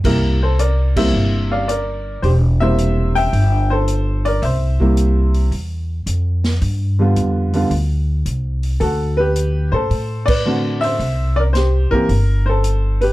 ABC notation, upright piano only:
X:1
M:4/4
L:1/8
Q:"Swing" 1/4=110
K:C
V:1 name="Upright piano"
[G_B] [Ac] [Bd] [ce]2 [df] [Bd]2 | [Gc] [ce]2 [eg]2 [Ac]2 [_Bd] | [ce]3 z4 z | z8 |
[^FA] [GB]2 [Ac]2 [Bd]2 [ce]- | [ce] [_Bd] [Gc] B2 [Ac]2 [G=B] |]
V:2 name="Upright piano"
[C,G,_B,E] z2 [C,G,B,E]3 z2 | z [C,G,_B,E]3 z4 | z [C,G,_B,E]3 z4 | z [D,G,B,F]2 [D,G,B,F] z4 |
z6 [D,A,C^F]2 | z3 [E,_B,CG] z4 |]